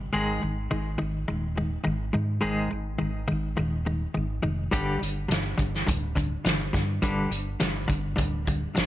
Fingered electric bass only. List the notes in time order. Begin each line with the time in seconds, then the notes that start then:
0.14 G#1
0.43 G#1
0.73 G#1
1.02 G#1
1.30 D#1
1.86 G#1
2.15 G#2
2.43 G#1
2.72 G#1
3.01 G#1
3.32 G#1
3.59 D#1
4.17 G#1
4.44 F1
4.73 G1
5.02 G1
5.30 G1
5.59 G1
5.89 D1
6.46 G1
6.75 G2
7.03 G1
7.31 G1
7.62 G1
7.90 G1
8.18 D1
8.78 G1